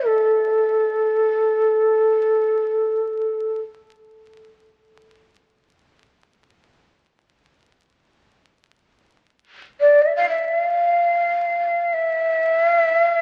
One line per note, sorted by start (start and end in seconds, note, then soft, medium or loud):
0.00 0.64 E3 soft
0.06 3.61 A4 medium
9.80 10.04 D5 medium
10.02 10.16 E5 medium
10.16 10.28 F5 medium
10.29 10.44 E5 medium
10.44 10.57 E5 medium
10.57 11.95 F5 medium
11.94 12.65 E5 medium
12.65 12.79 F5 medium
12.79 13.03 E5 medium
13.03 13.18 F5 medium
13.18 13.21 E5 medium